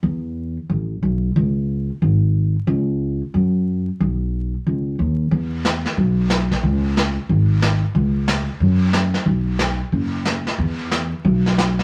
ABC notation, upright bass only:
X:1
M:4/4
L:1/8
Q:"Swing" 1/4=182
K:E
V:1 name="Upright bass" clef=bass
E,,4 A,,,2 B,,,2 | C,,4 G,,,4 | C,,4 F,,4 | B,,,4 C,,2 D,,2 |
E,,4 B,,,4 | C,,4 G,,,4 | C,,4 F,,4 | B,,,4 F,,,4 |
E,,4 B,,,4 |]